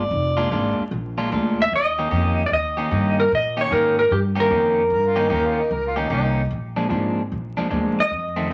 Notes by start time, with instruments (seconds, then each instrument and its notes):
Already playing: upright bass G1, harmonica D5
0.11 upright bass F1
0.37 clean electric guitar A#2 G#3 D4 F4
0.51 upright bass G#1, clean electric guitar A#2 G#3 D4 F4
0.79 muted upright bass stroke
0.91 upright bass A#1
1.18 clean electric guitar A#2 G#3 D4 F4
1.31 upright bass D2, clean electric guitar A#2 G#3 D4 F4
1.62 electric slide guitar E5
1.72 upright bass D#2, electric slide guitar D#5
1.99 clean electric guitar D#3 A#3 C#4 G4
2.10 upright bass F2, clean electric guitar D#3 A#3 C#4 G4
2.46 electric slide guitar D5
2.51 upright bass D#2, electric slide guitar D#5
2.77 clean electric guitar D#3 A#3 C#4 G4
2.91 upright bass G2, clean electric guitar D#3 A#3 C#4 G4
3.20 electric slide guitar A#4
3.32 upright bass A#2, electric slide guitar D#5
3.57 clean electric guitar D#3 A#3 C#4 G4
3.61 electric slide guitar C#5
3.70 upright bass G#2, clean electric guitar D#3 A#3 C#4 G4, electric slide guitar A#4
3.99 electric slide guitar A#4
4.11 upright bass G2, electric slide guitar G4
4.36 clean electric guitar D#3 A#3 C#4 G4
4.40 electric slide guitar A#4
4.50 upright bass F2, clean electric guitar D#3 A#3 C#4 G4
4.90 upright bass G2, harmonica A#4
5.07 harmonica F4
5.16 clean electric guitar D#3 A#3 C#4 G4
5.20 harmonica D#4
5.29 upright bass D#2, clean electric guitar D#3 A#3 C#4 G4, harmonica A#4
5.46 harmonica F4
5.60 harmonica D#4
5.71 upright bass C#2, harmonica A#4
5.87 harmonica F4
5.96 clean electric guitar D#3 A#3 C#4 G4, harmonica D#4
6.10 upright bass C2, clean electric guitar D#3 A#3 C#4 G4, harmonica D#4
6.51 upright bass A#1
6.76 clean electric guitar A#2 F3 G#3 D4
6.89 upright bass G#1, clean electric guitar A#2 F3 G#3 D4
7.32 upright bass A#1
7.57 clean electric guitar A#2 F3 G#3 D4, muted upright bass stroke
7.70 upright bass D2, clean electric guitar A#2 F3 G#3 D4
7.99 electric slide guitar D#5, muted upright bass stroke
8.11 upright bass F2
8.36 clean electric guitar F2 D#3 A3 C4
8.49 clean electric guitar F2 D#3 A3 C4